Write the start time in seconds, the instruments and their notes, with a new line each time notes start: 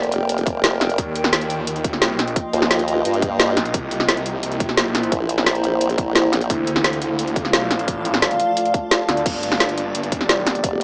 Already playing: wobble bass F1, ambient pad A#3 G4 A#4 D5 G5
0.03 closed hi-hat
0.12 closed hi-hat
0.29 closed hi-hat
0.38 closed hi-hat
0.46 kick, closed hi-hat
0.64 snare, closed hi-hat
0.81 snare, closed hi-hat
0.90 closed hi-hat
0.98 detuned saw bass D#2, ambient pad F4 D#5, kick, closed hi-hat
1.14 ambient pad D#5, closed hi-hat
1.24 snare
1.33 snare, closed hi-hat
1.41 closed hi-hat
1.50 closed hi-hat
1.67 closed hi-hat
1.76 closed hi-hat
1.84 kick, closed hi-hat
1.93 snare
1.97 detuned saw bass C#2
2.02 snare, closed hi-hat
2.19 detuned saw bass B1, snare, closed hi-hat
2.28 closed hi-hat
2.36 kick, closed hi-hat
2.53 wobble bass D#2, closed hi-hat
2.62 snare
2.71 snare, closed hi-hat
2.79 closed hi-hat
2.88 closed hi-hat
3.05 wobble bass G2, closed hi-hat
3.14 closed hi-hat
3.22 kick, closed hi-hat
3.40 snare, closed hi-hat
3.57 detuned saw bass A#1, snare, closed hi-hat
3.65 closed hi-hat
3.74 detuned saw bass C2, ambient pad E4 C5, kick, closed hi-hat
3.91 closed hi-hat
4.00 snare
4.09 snare, closed hi-hat
4.17 ambient pad C5 A#5, closed hi-hat
4.26 closed hi-hat
4.43 closed hi-hat
4.52 closed hi-hat
4.60 kick, closed hi-hat
4.69 detuned saw bass B1, snare
4.77 snare, closed hi-hat
4.95 detuned saw bass A#1, snare, closed hi-hat
5.03 closed hi-hat
5.12 wobble bass A#1, kick, closed hi-hat
5.29 closed hi-hat
5.38 snare
5.46 snare, closed hi-hat
5.55 closed hi-hat
5.64 closed hi-hat
5.81 closed hi-hat
5.90 closed hi-hat
5.98 kick, closed hi-hat
6.15 snare, closed hi-hat
6.33 snare, closed hi-hat
6.41 closed hi-hat
6.50 detuned saw bass D2, ambient pad A3 F4 D5 F5, kick, closed hi-hat
6.67 closed hi-hat
6.74 ambient pad A5, snare
6.84 ambient pad D5, snare, closed hi-hat
6.93 closed hi-hat
7.02 closed hi-hat
7.19 closed hi-hat
7.28 closed hi-hat
7.36 kick, closed hi-hat
7.45 snare
7.49 detuned saw bass C2
7.53 snare, closed hi-hat
7.71 detuned saw bass A#1, snare, closed hi-hat
7.79 closed hi-hat
7.88 detuned saw bass A1, kick, closed hi-hat
8.05 closed hi-hat
8.14 snare
8.22 snare, closed hi-hat
8.31 closed hi-hat
8.40 closed hi-hat
8.57 closed hi-hat
8.65 closed hi-hat
8.74 kick, closed hi-hat
8.91 snare, closed hi-hat
9.09 detuned saw bass D2, snare, closed hi-hat
9.17 closed hi-hat
9.26 detuned saw bass G1, ambient pad A#3 G4 G5, kick, closed hi-hat, crash
9.43 closed hi-hat
9.52 snare
9.60 snare, closed hi-hat
9.69 closed hi-hat
9.78 closed hi-hat
9.95 closed hi-hat
10.03 closed hi-hat
10.12 kick, closed hi-hat
10.16 ambient pad A#5
10.21 snare
10.29 snare, closed hi-hat
10.47 snare, closed hi-hat
10.55 closed hi-hat
10.64 wobble bass F1, kick, closed hi-hat